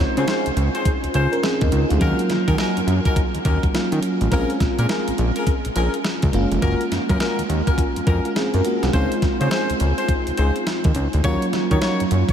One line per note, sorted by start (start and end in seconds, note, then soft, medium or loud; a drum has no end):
0.00 1.11 G#3 medium
0.00 1.11 C4 medium
0.00 1.33 C#4 soft
0.00 1.12 D#4 medium
0.00 1.12 F4 medium
0.17 0.25 C#3 loud
0.17 0.26 C#4 medium
0.17 0.27 F4 medium
0.17 0.27 G#4 medium
0.17 0.27 C5 medium
0.17 closed hi-hat medium
0.28 0.48 C#4 medium
0.28 0.49 F4 medium
0.28 0.49 G#4 medium
0.28 0.49 C5 medium
0.28 snare loud
0.28 closed hi-hat medium
0.46 0.51 C#2 medium
0.46 closed hi-hat medium
0.57 0.69 C#2 medium
0.57 closed hi-hat medium
0.74 0.90 C#4 medium
0.74 0.90 F4 medium
0.74 0.90 G#4 medium
0.74 0.90 C5 medium
0.74 closed hi-hat medium
0.85 kick medium
0.85 closed hi-hat medium
1.04 1.08 C#2 soft
1.04 closed hi-hat soft
1.14 1.27 C#2 medium
1.14 1.35 C#4 medium
1.14 1.35 F4 medium
1.14 1.35 G#4 medium
1.14 1.35 C5 medium
1.14 closed hi-hat medium
1.32 1.43 C#4 soft
1.32 1.42 A#4 medium
1.32 closed hi-hat soft
1.43 1.61 C4 medium
1.43 1.60 G#4 medium
1.43 snare loud
1.43 closed hi-hat medium
1.61 1.69 D#2 medium
1.61 1.88 D#4 medium
1.61 kick loud
1.61 closed hi-hat medium
1.72 1.85 C#2 medium
1.72 closed hi-hat medium
1.89 1.98 D2 medium
1.89 2.17 G#3 medium
1.89 2.00 F4 medium
1.89 closed hi-hat medium
1.99 2.14 D#2 loud
1.99 3.69 F#3 medium
1.99 3.70 A#3 medium
1.99 2.21 C#4 medium
1.99 3.70 C#4 medium
1.99 2.22 D#4 medium
1.99 3.71 F4 medium
1.99 2.22 F#4 medium
1.99 2.22 A#4 loud
1.99 kick medium
1.99 closed hi-hat medium
2.19 closed hi-hat medium
2.30 2.37 D#3 medium
2.30 snare medium
2.30 closed hi-hat medium
2.48 2.55 D#3 loud
2.48 2.57 C#4 medium
2.48 2.57 D#4 medium
2.48 2.57 F#4 medium
2.48 2.58 A#4 medium
2.48 kick medium
2.48 closed hi-hat medium
2.58 2.79 C#4 medium
2.58 2.79 D#4 medium
2.58 2.79 F#4 medium
2.58 2.79 A#4 medium
2.58 snare loud
2.58 closed hi-hat medium
2.77 2.81 F#2 soft
2.77 closed hi-hat medium
2.87 3.00 F#2 medium
2.87 closed hi-hat medium
3.05 3.20 C#4 medium
3.05 3.21 D#4 medium
3.05 3.21 F#4 medium
3.05 3.21 A#4 medium
3.05 kick medium
3.05 closed hi-hat medium
3.16 kick medium
3.16 closed hi-hat medium
3.35 3.39 D#2 soft
3.35 closed hi-hat soft
3.45 3.58 D#2 medium
3.45 3.66 C#4 medium
3.45 3.66 D#4 medium
3.45 3.66 F#4 medium
3.45 3.66 A#4 medium
3.45 kick medium
3.45 closed hi-hat medium
3.63 kick medium
3.63 closed hi-hat soft
3.74 4.31 F#3 medium
3.74 4.32 A#3 medium
3.74 4.31 C#4 soft
3.74 4.32 F4 medium
3.74 snare loud
3.74 closed hi-hat medium
3.92 4.00 D#3 medium
3.92 closed hi-hat medium
4.03 closed hi-hat medium
4.21 4.29 A1 medium
4.21 closed hi-hat medium
4.31 4.45 A#1 loud
4.31 6.29 G#3 medium
4.31 6.29 C4 medium
4.31 4.52 C#4 medium
4.31 6.30 C#4 medium
4.31 4.52 F4 medium
4.31 6.30 F4 medium
4.31 4.52 G#4 medium
4.31 4.52 A#4 loud
4.31 kick loud
4.31 closed hi-hat medium
4.50 closed hi-hat soft
4.60 4.68 A#2 medium
4.60 kick medium
4.60 snare medium
4.60 closed hi-hat medium
4.78 4.86 A#2 loud
4.78 4.87 C#4 medium
4.78 4.88 F4 medium
4.78 4.88 G#4 medium
4.78 4.88 A#4 medium
4.78 closed hi-hat medium
4.88 5.10 C#4 medium
4.88 5.10 F4 medium
4.88 5.10 G#4 medium
4.88 5.10 A#4 medium
4.88 snare loud
4.88 closed hi-hat medium
5.08 5.12 A#1 soft
5.08 closed hi-hat medium
5.18 5.31 A#1 loud
5.18 closed hi-hat medium
5.36 5.51 C#4 medium
5.36 5.51 F4 medium
5.36 5.51 G#4 medium
5.36 5.51 A#4 medium
5.36 closed hi-hat medium
5.47 kick medium
5.47 closed hi-hat medium
5.65 5.70 A#1 soft
5.65 closed hi-hat medium
5.75 5.89 A#1 medium
5.75 5.96 C#4 medium
5.75 5.96 F4 medium
5.75 5.97 G#4 medium
5.75 5.97 A#4 medium
5.75 closed hi-hat medium
5.94 closed hi-hat soft
6.04 snare loud
6.04 closed hi-hat medium
6.22 6.31 C#2 medium
6.22 kick loud
6.22 closed hi-hat medium
6.32 6.46 F#1 loud
6.32 8.02 G#3 medium
6.32 8.03 A#3 medium
6.32 8.03 C#4 medium
6.32 8.04 F4 medium
6.32 closed hi-hat medium
6.51 6.59 F1 medium
6.51 closed hi-hat medium
6.62 6.75 F#1 loud
6.62 6.83 C#4 medium
6.62 6.83 F4 medium
6.62 6.83 F#4 medium
6.62 6.83 A#4 loud
6.62 kick loud
6.62 closed hi-hat medium
6.81 closed hi-hat medium
6.92 6.99 F#2 soft
6.92 snare medium
6.92 closed hi-hat medium
7.09 7.17 F#2 loud
7.09 7.18 C#4 medium
7.09 7.19 F4 medium
7.09 7.19 F#4 medium
7.09 7.19 A#4 medium
7.09 kick medium
7.09 closed hi-hat medium
7.20 7.40 C#4 medium
7.20 7.41 F4 medium
7.20 7.41 F#4 medium
7.20 7.41 A#4 medium
7.20 snare loud
7.20 closed hi-hat medium
7.39 7.43 D#2 soft
7.39 closed hi-hat medium
7.49 7.62 D#2 medium
7.49 closed hi-hat medium
7.67 7.82 C#4 medium
7.67 7.82 F4 medium
7.67 7.82 F#4 medium
7.67 7.82 A#4 medium
7.67 kick medium
7.67 closed hi-hat medium
7.78 kick medium
7.78 closed hi-hat medium
7.96 8.01 F2 soft
7.96 closed hi-hat medium
8.07 8.20 F2 medium
8.07 8.27 C#4 medium
8.07 8.27 F4 medium
8.07 8.27 F#4 medium
8.07 8.27 A#4 medium
8.07 kick loud
8.07 closed hi-hat medium
8.25 8.35 G#3 medium
8.25 8.35 F4 medium
8.25 closed hi-hat soft
8.36 8.53 C4 medium
8.36 8.53 G#4 medium
8.36 snare loud
8.36 closed hi-hat medium
8.54 8.62 F#2 medium
8.54 8.65 C#4 medium
8.54 8.64 A#4 medium
8.54 closed hi-hat medium
8.65 8.83 A#3 medium
8.65 8.82 F#4 medium
8.65 closed hi-hat medium
8.83 8.90 C2 medium
8.83 8.92 G#3 soft
8.83 8.94 F4 medium
8.83 snare medium
8.83 closed hi-hat medium
8.93 9.07 C#2 loud
8.93 11.20 G#3 medium
8.93 11.20 C4 medium
8.93 9.14 C#4 medium
8.93 11.21 D#4 medium
8.93 9.14 F4 medium
8.93 11.21 F4 medium
8.93 9.14 G#4 medium
8.93 9.14 C5 medium
8.93 kick loud
8.93 closed hi-hat medium
9.12 closed hi-hat medium
9.22 9.30 C#3 medium
9.22 kick medium
9.22 snare medium
9.22 closed hi-hat medium
9.40 9.48 C#3 medium
9.40 9.50 C#4 medium
9.40 9.50 F4 medium
9.40 9.50 G#4 medium
9.40 9.50 C5 medium
9.40 closed hi-hat medium
9.51 9.72 C#4 medium
9.51 9.72 F4 medium
9.51 9.72 G#4 medium
9.51 9.72 C5 medium
9.51 snare loud
9.51 closed hi-hat medium
9.70 9.74 C#2 soft
9.70 closed hi-hat medium
9.80 9.93 C#2 medium
9.80 closed hi-hat medium
9.98 10.13 C#4 medium
9.98 10.13 F4 medium
9.98 10.13 G#4 medium
9.98 10.13 C5 medium
9.98 closed hi-hat medium
10.09 kick medium
10.09 closed hi-hat medium
10.27 10.32 C#2 soft
10.27 closed hi-hat medium
10.37 10.51 C#2 medium
10.37 10.58 C#4 medium
10.37 10.58 F4 medium
10.37 10.58 G#4 medium
10.37 10.58 C5 medium
10.37 closed hi-hat medium
10.56 closed hi-hat soft
10.67 snare loud
10.67 closed hi-hat medium
10.84 10.92 D#2 medium
10.84 kick loud
10.84 closed hi-hat medium
10.95 11.08 C#2 medium
10.95 closed hi-hat medium
11.13 11.21 D2 medium
11.13 closed hi-hat medium
11.23 11.37 D#2 loud
11.23 12.33 F#3 medium
11.23 12.33 A#3 medium
11.23 12.33 C#4 medium
11.23 11.45 D#4 medium
11.23 12.33 F4 medium
11.23 11.45 F#4 medium
11.23 11.45 A#4 medium
11.23 11.45 C#5 loud
11.23 kick loud
11.23 closed hi-hat medium
11.42 closed hi-hat medium
11.53 11.61 D#3 medium
11.53 snare medium
11.53 closed hi-hat medium
11.71 11.79 D#3 loud
11.71 11.80 D#4 medium
11.71 11.80 F#4 medium
11.71 11.80 A#4 medium
11.71 11.81 C#5 medium
11.71 kick medium
11.71 closed hi-hat medium
11.81 12.02 D#4 medium
11.81 12.02 F#4 medium
11.81 12.02 A#4 medium
11.81 12.02 C#5 medium
11.81 snare loud
11.81 closed hi-hat medium
12.00 12.05 F#2 soft
12.00 closed hi-hat medium
12.11 12.24 F#2 medium
12.11 closed hi-hat medium
12.29 12.33 D#4 medium
12.29 12.33 F#4 medium
12.29 12.33 A#4 medium
12.29 12.33 C#5 medium
12.29 kick medium
12.29 closed hi-hat medium